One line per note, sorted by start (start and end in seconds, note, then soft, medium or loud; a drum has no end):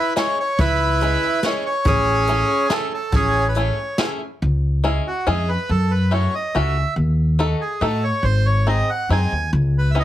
0.00 0.14 E4 medium
0.00 0.14 B4 loud
0.16 0.38 G#3 medium
0.16 0.38 C#4 medium
0.16 0.38 E4 soft
0.16 0.39 G#4 medium
0.16 0.38 C#5 medium
0.16 snare medium
0.16 closed hi-hat soft
0.40 0.61 C#5 medium
0.59 1.14 C#2 loud
0.59 1.40 E4 medium
0.59 1.47 B4 loud
0.59 kick medium
0.59 closed hi-hat soft
1.01 1.23 G#3 medium
1.01 1.23 C#4 medium
1.01 1.23 E4 medium
1.01 1.24 G#4 medium
1.01 closed hi-hat soft
1.43 1.66 G#3 medium
1.43 1.66 C#4 medium
1.43 1.66 E4 medium
1.43 1.66 G#4 medium
1.43 1.64 C#5 medium
1.43 snare medium
1.43 closed hi-hat soft
1.66 1.87 C#5 medium
1.85 2.41 A1 loud
1.85 2.67 C#4 medium
1.85 2.74 G#4 loud
1.85 kick medium
1.85 closed hi-hat soft
2.27 2.50 A3 soft
2.27 2.50 C#4 medium
2.27 2.50 E4 medium
2.27 2.50 G#4 medium
2.27 closed hi-hat soft
2.70 2.92 A3 medium
2.70 2.92 C#4 medium
2.70 2.92 E4 medium
2.70 2.92 G#4 medium
2.70 2.92 A4 medium
2.70 snare medium
2.70 closed hi-hat soft
2.94 3.15 A4 medium
3.12 3.68 A1 loud
3.12 3.74 C#4 medium
3.12 3.47 G#4 loud
3.12 kick medium
3.12 closed hi-hat soft
3.49 3.58 B4 medium
3.55 3.78 A3 medium
3.55 3.78 C#4 soft
3.55 3.78 E4 soft
3.55 3.79 G#4 medium
3.55 closed hi-hat soft
3.59 3.98 C#5 medium
3.98 4.21 A3 medium
3.98 4.21 C#4 medium
3.98 4.21 E4 medium
3.98 4.21 G#4 medium
3.98 snare medium
3.98 closed hi-hat soft
4.42 4.97 C#2 medium
4.84 5.06 G#3 medium
4.84 5.06 C#4 medium
4.84 5.06 E4 medium
4.84 5.06 G#4 medium
5.07 5.28 F#4 medium
5.27 5.54 F2 medium
5.27 5.49 G#3 medium
5.27 5.49 C#4 medium
5.27 5.49 E4 medium
5.27 5.49 G#4 medium
5.27 5.50 G#4 medium
5.49 5.70 B4 medium
5.69 6.25 F#2 medium
5.69 5.92 A4 medium
5.91 6.13 B4 medium
6.11 6.33 A3 medium
6.11 6.34 C#4 soft
6.11 6.34 E4 soft
6.11 6.34 F#4 medium
6.11 6.35 C#5 medium
6.35 6.56 D#5 medium
6.55 6.82 C#2 medium
6.55 6.76 A3 medium
6.55 6.77 C#4 medium
6.55 6.76 E4 medium
6.55 6.77 F#4 medium
6.55 6.94 E5 medium
6.96 7.52 D#2 medium
7.39 7.61 A3 medium
7.39 7.61 D#4 medium
7.39 7.61 F#4 medium
7.39 7.61 A4 medium
7.61 7.82 G#4 medium
7.81 8.09 A2 medium
7.81 8.03 A3 medium
7.81 8.04 D#4 soft
7.81 8.04 F#4 medium
7.81 8.04 A4 medium
8.03 8.25 C#5 medium
8.23 8.79 G#1 medium
8.23 8.47 C5 medium
8.46 8.68 C#5 medium
8.67 8.89 G#3 soft
8.67 8.89 C4 soft
8.67 8.89 D#4 soft
8.67 8.89 G#4 medium
8.67 8.90 D#5 medium
8.90 9.09 F#5 medium
9.09 9.29 F#2 medium
9.09 9.32 G#3 medium
9.09 9.32 C4 medium
9.09 9.33 D#4 medium
9.09 9.33 G#4 medium
9.09 9.51 G#5 medium
9.31 9.51 D#2 medium
9.53 10.04 C#2 loud
9.78 9.91 B4 medium
9.91 9.97 E5 medium
9.95 10.04 B3 medium
9.95 10.04 C#4 soft
9.95 10.04 E4 soft
9.95 10.04 G#4 soft
9.99 10.04 D#5 medium